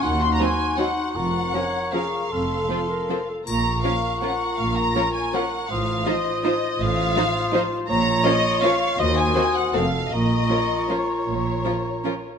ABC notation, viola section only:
X:1
M:3/4
L:1/8
Q:1/4=159
K:Bbm
V:1 name="Viola section"
z2 [G,C]2 [G,C]2 | z2 [F,D]2 [F,D]2 | z2 [F,C]2 [F,C]2 | z2 [F,D]2 [F,D]2 |
z2 [F,D]2 [F,D]2 | z2 [F,E]2 [F,E]2 | z2 [F,E]2 [F,E]2 | z2 [F,D]2 [F,D]2 |
z2 [E,C]2 [E,C]2 | z2 [F,D]2 [F,D]2 | z2 [F,D]2 [F,D]2 |]